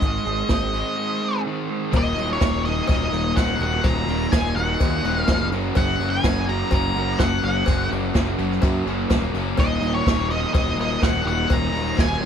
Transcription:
Already playing: D#5
0.01 G#1 G#2 D#3 G#3, kick, closed hi-hat
0.25 G#1 G#3, closed hi-hat
0.49 G#1 C4, kick, snare, closed hi-hat
0.73 G#2 D#3 G#3 D#4, closed hi-hat
0.97 G#3
1.22 C4
1.45 G#2 D#3 G#3
1.69 G#3
1.93 D#1 D#2 A#2 D#3 F#3 A#3 D#4, kick, ride, cowbell
1.97 D#5
2.15 D#1 D#2 A#2 A#3 D#4, ride
2.20 D#3 F#3
2.33 C#5
2.41 D#1 D#2 A#2 D#3 F#3 A#3 D#4, kick, snare, ride, cowbell
2.64 D#2 A#2 D#3 F#3 A#3 D#4 D#5, ride
2.87 D#1 D#2 A#2 D#3 F#3 A#3 D#4 D#5, kick, ride, cowbell
3.12 D#1 D#2 A#2 D#3 F#3 A#3 D#4, ride
3.35 D#1 D#2 A#2 D#3 F#3 F#5, kick, snare, ride, cowbell
3.39 A#3 D#4
3.59 D#1 D#2 A#2 A#3 D#4 F#5, ride
3.63 D#3 F#3
3.84 D#1 D#2 A#2 D#3 F#3 A#3 D#4 A#5, kick, ride, cowbell
4.06 D#1 D#2 A#2 F#3 A#3 D#4, ride
4.11 D#3
4.32 D#1 D#2 A#2 D#3 F#3 A#3 D#4 G#5, kick, snare, ride, cowbell
4.55 D#1 D#2 A#2 D#3 F#3 A#3 D#4 F#5, ride
4.80 D#2 A#2 D#3 F#3 A#3 D#4, kick, ride, cowbell
5.03 D#1 D#2 A#2 D#3 F#3 A#3 D#4, ride
5.18 F5
5.27 F1 D#2 A#2 D#3 F#3 A#3 D#4, kick, snare, ride, cowbell
5.51 F#1 F#2 C#3 F#3 A#3 C#4 F#4, ride
5.75 F#1 F#2 C#3 F#3 A#3 C#4 F#4 F#5, kick, ride, cowbell
5.99 F#1 F#2 C#3 C#4 F#4, ride
6.03 F#3 A#3
6.10 G#5
6.24 F#1 F#2 C#3 F#3 A#3 C#4 F#4, kick, snare, ride, cowbell
6.47 F#2 C#3 C#4 F#4 A#5, ride
6.51 F#3 A#3
6.71 F#1 F#2 C#3 F#3 A#3 C#4 F#4 A#5, kick, ride, cowbell
6.95 F#1 F#2 C#3 F#3 A#3 C#4 F#4, ride
7.18 F#1 F#2 C#3 F#3 A#3 C#4 F#5, kick, snare, ride, cowbell
7.23 F#4
7.43 F#1 F#2 C#3 F#3 A#3 C#4 F#4 F#5, ride
7.66 F#1 F#2 C#3 F#3 A#3 C#4 F#4, kick, ride, cowbell
7.89 F#1 F#2 C#3 F#3 A#3 C#4 F#4, ride
8.14 F#1 F#2 C#3 F#3 A#3 C#4 F#4, kick, snare, ride, cowbell
8.38 F#1 F#2 C#3 F#3 A#3 C#4 F#4, ride
8.52 snare
8.62 F#2 C#3 F#3 A#3 C#4 F#4, kick, ride, cowbell
8.85 F#1 F#2 C#3 A#3 C#4 F#4, ride
8.89 F#3
9.10 D#1 F#2 C#3 F#3 A#3 C#4 F#4, kick, snare, ride, cowbell
9.33 F#1 F#2 C#3 A#3 C#4 F#4, ride
9.37 F#3
9.57 D#1 D#2 A#2 D#3 F#3 A#3 D#4 D#5, kick, crash, cowbell
9.80 D#1 D#2 A#2 D#3 A#3 D#4, ride
9.86 D#3 F#3
9.95 C#5
10.06 D#1 D#2 A#2 D#3 F#3 A#3 D#4, kick, snare, ride, cowbell
10.30 D#2 A#2 D#3 F#3 A#3 D#4 D#5, ride
10.53 D#1 D#2 A#2 D#3 F#3 A#3 D#4 D#5, kick, ride, cowbell
10.75 D#1 D#2 A#2 A#3 D#4, ride
10.80 D#3 F#3 D#5
11.01 D#1 D#2 A#2 D#3 F#3 A#3 F#5, kick, snare, ride, cowbell
11.06 D#4
11.24 D#1 D#2 A#2 D#3 A#3 D#4, ride
11.28 D#3 F#3 F#5
11.50 D#1 D#2 A#2 D#3 F#3 A#3 D#4 A#5, kick, ride, cowbell
11.72 D#1 D#2 A#2 D#3 D#4, ride
11.76 D#3 F#3 A#3
11.97 D#1 D#2 A#2 D#3 F#3 A#3 D#4 G#5, kick, snare, ride, cowbell
12.19 D#1 D#2 A#2 F#3 A#3 D#4

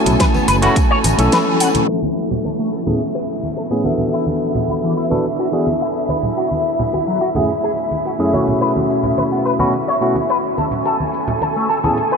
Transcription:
Already playing: A3 C#4 E4 F#4 A4 G#5
0.06 B1, closed hi-hat, tambourine, high bongo, low conga
0.19 B4, kick, snare, closed hi-hat, tambourine
0.34 B3, snare, tambourine, high conga
0.48 F#1 B4, open hi-hat, tambourine
0.62 A3 C#4 E4 F#4 B4, closed hi-hat, tambourine, high bongo, low conga
0.76 kick, closed hi-hat, tambourine
0.91 C#5
1.04 A1, open hi-hat, tambourine, high conga
1.18 B1 A3 C#4 E4 A4, closed hi-hat, tambourine, high bongo
1.32 B4, snare, closed hi-hat, tambourine
1.60 F#5, open hi-hat, tambourine
1.74 closed hi-hat, tambourine, high bongo, high conga, low conga
1.88 E4 A4 E5, tambourine, downlifter
2.03 high conga
2.16 tambourine, shaker
2.31 closed hi-hat, tambourine, high bongo, low conga
2.45 A4, closed hi-hat, tambourine, high conga
2.59 A3
2.72 A4, tambourine
2.86 A2 B3 C#4 E4 G#4 A4, closed hi-hat, tambourine, high conga, low conga
3.01 closed hi-hat
3.15 B4
3.28 tambourine, shaker
3.43 closed hi-hat, tambourine, high conga
3.56 A4, closed hi-hat, tambourine, shaker
3.70 A2 B3 C#4 E4 G#4, high bongo
3.84 E3 B3 D4 F#4 A4 E5, tambourine, high conga, shaker
3.98 closed hi-hat, tambourine, low conga
4.13 E4, closed hi-hat, tambourine, shaker
4.27 high conga
4.41 shaker
4.55 closed hi-hat, tambourine, high bongo, low conga, shaker
4.68 E4, closed hi-hat, tambourine, high conga, shaker
4.83 E3
4.97 E4, tambourine, shaker
5.10 E3 B3 D4 E4 F#4 A4, closed hi-hat, tambourine, high conga, low conga
5.25 closed hi-hat, tambourine, shaker
5.39 F#4
5.52 E3 B3 D4 F#4 G#4, tambourine, shaker
5.67 closed hi-hat, tambourine, high bongo, high conga, shaker
5.81 E4, closed hi-hat, tambourine, shaker
5.95 shaker
6.08 B4, tambourine, high conga, shaker
6.23 closed hi-hat, tambourine, low conga, shaker
6.37 F#4, closed hi-hat, tambourine, shaker
6.51 high conga
6.65 tambourine, shaker
6.79 closed hi-hat, tambourine, high bongo, low conga, shaker
6.93 F#4, closed hi-hat, tambourine, high conga, shaker
7.07 F#3
7.21 F#4, tambourine, shaker
7.35 F#2 A3 C#4 E4 F#4 G#4, closed hi-hat, tambourine, high conga, low conga, shaker
7.49 closed hi-hat, tambourine, shaker
7.64 G#4
7.77 tambourine, shaker
7.91 closed hi-hat, tambourine, high conga, shaker
8.05 F#4, closed hi-hat, tambourine, shaker
8.19 F#2 A3 C#4 E4 G#4, high bongo, shaker
8.32 B2 A3 C#4 E4 F#4 C#5, tambourine, high conga, shaker
8.48 closed hi-hat, tambourine, low conga, shaker
8.61 B4, closed hi-hat, tambourine, shaker
8.76 tambourine, high conga
8.90 tambourine, shaker
9.03 closed hi-hat, tambourine, high bongo, low conga, shaker
9.17 B4, closed hi-hat, tambourine, high conga, shaker
9.31 B3, tambourine
9.45 B4, tambourine, shaker
9.59 B2 A3 C#4 E4 F#4 B4, closed hi-hat, tambourine, high conga, low conga, shaker
9.73 closed hi-hat, tambourine, shaker
9.87 C#5, tambourine
10.01 B2 A3 C#4 E4 F#4, tambourine, shaker
10.15 closed hi-hat, tambourine, high bongo, high conga, shaker
10.29 B4, closed hi-hat, tambourine, shaker
10.44 tambourine, shaker
10.57 A4, tambourine, high conga, shaker
10.71 closed hi-hat, tambourine, low conga, shaker
10.85 A4 G#5, closed hi-hat, tambourine, shaker
11.00 high conga
11.14 tambourine, shaker
11.28 closed hi-hat, tambourine, high bongo, low conga, shaker
11.41 A4, closed hi-hat, tambourine, high conga, shaker
11.56 A3
11.70 A4, tambourine, shaker
11.83 A2 B3 C#4 E4 G#4 A4, closed hi-hat, tambourine, high conga, low conga, shaker
11.98 closed hi-hat, tambourine, shaker
12.12 B4

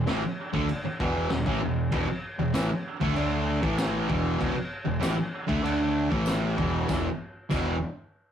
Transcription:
0.07 A1 A2 E3, snare, crash
0.23 muted distorted electric guitar stroke, muted fingered electric bass stroke
0.53 D2 D3 A3, kick
0.69 muted distorted electric guitar stroke, muted fingered electric bass stroke, crash
0.85 muted distorted electric guitar stroke, muted fingered electric bass stroke
1.00 E1 E2 B2 E3, kick
1.30 E1 E2 B2, snare, crash
1.46 A1 A2 E3, kick
1.61 E1 E2 B2
1.92 E1 E2 B2, kick, crash
2.08 muted distorted electric guitar stroke, muted fingered electric bass stroke
2.38 E1 E2 B2
2.54 A1 A2 E3, snare, tambourine, crash
2.70 muted distorted electric guitar stroke, muted fingered electric bass stroke
3.01 D2 D3 A3, kick
3.16 D2 D3 A3 D4, crash
3.62 A1 A2 E3 A3, kick
3.78 snare, tambourine, crash
4.08 E1 E2 B2 E3, kick
4.39 E1 E2 B2, kick, crash
4.54 muted distorted electric guitar stroke, muted fingered electric bass stroke
4.85 E1 E2 B2
5.00 A1 A2 E3, snare, tambourine, crash
5.17 muted distorted electric guitar stroke, muted fingered electric bass stroke
5.47 D2 D3 A3, kick
5.63 D2 D3 A3 D4, crash
6.10 A1 A2 E3 A3, kick
6.26 snare, tambourine, crash
6.56 E1 E2 B2 E3, kick
6.87 E1 E2 B2 E3, kick, snare, tambourine
7.50 E1 E2 B2 E3, kick, crash, tambourine

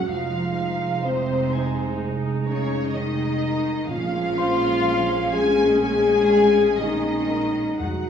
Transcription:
0.09 F1 F3 G#3 D#4 F4 F5
1.04 C3 C4 C5
1.53 G#5
2.47 C#3 C#4 C#5
2.94 D#3 D#5
2.98 D#4
3.88 A#1 A#2 F3 G#3 C#4 F4 F5
4.38 C5 C6
5.32 G#3 G#4 G#5
5.81 G#3 G#4 G#5
6.80 D#3 D#4 D#5
7.30 A#4 A#5
7.80 F1 F2 F#3 G#3 D#4 F#4 F#5

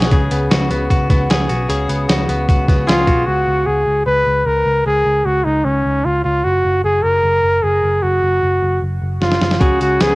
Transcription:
Already playing: C#3 B3 F#4 G#4
0.02 snare
0.11 C#2 C#3 G#4, kick, closed hi-hat
0.31 C#2 B3, closed hi-hat
0.51 C#2 F#4, snare, closed hi-hat
0.71 C#2 B3, closed hi-hat
0.90 C#2 F#4, kick, closed hi-hat
1.10 C#2 B3, kick, snare, closed hi-hat
1.30 C#2 G#4, snare, closed hi-hat
1.49 B1 F#4, closed hi-hat
1.69 C#2 C#3 G#4, closed hi-hat
1.89 C#2 B3, closed hi-hat
2.09 C#2 F#4, snare, closed hi-hat
2.29 C#2 B3, closed hi-hat
2.49 C#2 F#4, kick, closed hi-hat
2.68 C#2 B3, kick, snare, closed hi-hat
2.87 C#2 F4 G#4, snare, closed hi-hat
3.07 B1 F#4, kick, closed hi-hat
3.26 C#2 F#4
3.48 C#2
3.66 C#2 G#4
3.87 C#2
4.06 C#2 B4
4.27 C#2
4.46 C#2 A#4
4.66 C#2
4.86 C#2 G#4
5.06 C#2
5.25 C#2 F#4
5.45 C#2 D#4
5.64 C#2 C#4
5.85 C#2
6.05 C#2 F4
6.24 C#2 F4
6.44 F#1 F#4
6.65 F#1
6.84 F#1 G#4
7.03 F#1 A#4
7.23 F#1
7.43 F#1
7.63 F#1 G#4
7.83 F#1
8.03 F#1 F#4
8.22 F#1
8.43 F#1
8.62 F#1
8.82 F#1
9.02 F#1
9.21 F#1 F4, snare
9.32 snare
9.41 F#1, snare
9.51 snare
9.60 C#2 C#3 F#4 G#4, kick, closed hi-hat
9.80 C#2 F#4, closed hi-hat
10.00 C#2 B3 G#4, snare, closed hi-hat

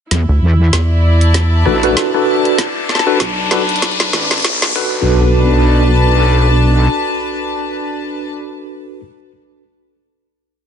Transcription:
0.11 E2 E4, kick, snare, closed hi-hat, riser
0.29 D2
0.42 E2
0.72 E2 D5, kick, snare, closed hi-hat
1.18 A5, closed hi-hat
1.34 kick, snare, closed hi-hat
1.66 A1 D4 F#4 A4 B4, cross-stick
1.83 D4 F#4 A4 B4, closed hi-hat
1.97 kick, snare, closed hi-hat
2.14 D4 F#4 A4 B4, cross-stick
2.45 closed hi-hat
2.58 D4, kick, snare, closed hi-hat
2.87 B4, snare
2.95 snare
2.99 snare
3.07 D4 F#4 A4 B4
3.20 B1, kick, snare, closed hi-hat
3.51 D4 F#4 A4 B4, snare
3.69 closed hi-hat
3.76 closed hi-hat
3.82 kick, snare, closed hi-hat
3.91 closed hi-hat
4.00 snare
4.13 A1, snare
4.31 snare, closed hi-hat
4.33 closed hi-hat
4.38 closed hi-hat
4.40 closed hi-hat
4.42 B1, snare, closed hi-hat
4.44 kick, closed hi-hat
4.62 snare
4.75 B1 D4 F#4 A4 B4, kick, crash, impact
4.88 B4
5.27 A5

